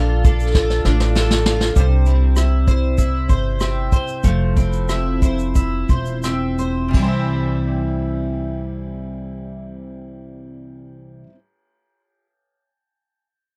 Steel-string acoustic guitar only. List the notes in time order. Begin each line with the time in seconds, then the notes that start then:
Already playing: D4 F4 A4
0.25 A4
0.55 F4
0.86 D4
1.15 A4
1.46 F4
1.77 C3 C5
2.07 C4
2.38 E4
2.68 C5
2.99 E4
3.29 C5
3.61 C4
3.93 C5
4.24 F3 C5
4.57 C4
4.89 E4
5.22 C5
5.55 E4
5.90 C5
6.24 C4
6.59 C5
6.91 C3 E3
6.97 G3 C4
7.02 E4 C5